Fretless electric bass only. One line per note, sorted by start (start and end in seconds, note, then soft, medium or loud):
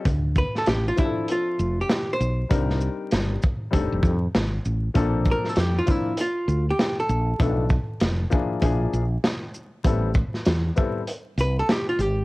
0.05 0.42 D2 medium
0.67 0.90 A1 medium
1.59 1.82 F1 medium
2.20 2.43 B1 medium
2.51 2.88 C2 medium
3.13 3.35 G1 medium
3.73 3.87 F1 medium
3.92 4.01 F1 medium
4.03 4.26 F2 loud
4.35 4.58 G#1 medium
4.65 4.88 A1 medium
4.95 5.32 A#1 medium
5.57 5.80 F2 medium
6.48 6.71 D2 medium
7.09 7.32 A#1 medium
7.40 7.77 B1 loud
8.01 8.24 F1 loud
8.62 8.85 A#1 medium
8.93 9.16 A#1 medium
9.85 10.22 A1 medium
10.47 10.69 E2 medium
11.38 11.61 C2 medium
11.99 12.22 G#1 medium